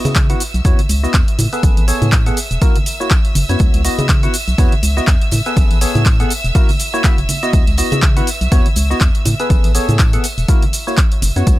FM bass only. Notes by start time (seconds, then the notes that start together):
0.05 C#3
0.54 B1
0.65 E2
0.89 C#2
1.14 E2
1.39 A2
1.63 A1
1.77 A1
2.02 A2
2.51 E1
3.35 F#1
3.49 F#2
3.60 C#2
3.74 C#2
3.99 C#3
4.48 B1
4.58 E2
4.83 C#2
5.08 E2
5.32 A2
5.57 A1
5.71 A1
5.95 A2
6.44 E1
7.18 F#1
7.53 C#2
7.67 C#2
7.92 C#3
8.41 B1
8.52 E2
8.76 C#2
9.01 E2
9.26 A2
9.50 A1
9.64 A1
9.89 A2
10.38 E1
11.22 F#1
11.36 F#2
11.47 C#2